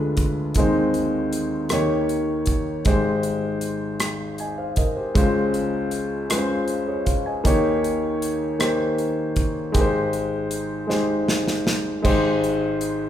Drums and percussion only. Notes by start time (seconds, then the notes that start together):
0.17 kick, closed hi-hat
0.55 kick, closed hi-hat
0.94 closed hi-hat
1.33 closed hi-hat
1.69 cross-stick, closed hi-hat
2.09 closed hi-hat
2.46 kick, closed hi-hat
2.85 kick, closed hi-hat
3.23 closed hi-hat
3.61 closed hi-hat
4.00 cross-stick, closed hi-hat
4.38 closed hi-hat
4.76 kick, closed hi-hat
5.15 kick, closed hi-hat
5.54 closed hi-hat
5.91 closed hi-hat
6.30 cross-stick, closed hi-hat
6.68 closed hi-hat
7.06 kick, closed hi-hat
7.45 kick, closed hi-hat
7.84 closed hi-hat
8.22 closed hi-hat
8.60 cross-stick, closed hi-hat
8.98 closed hi-hat
9.36 kick, closed hi-hat
9.74 kick, closed hi-hat
10.13 closed hi-hat
10.51 closed hi-hat
10.90 snare
11.28 snare
11.47 snare
11.67 snare
12.05 kick, crash
12.44 closed hi-hat
12.81 closed hi-hat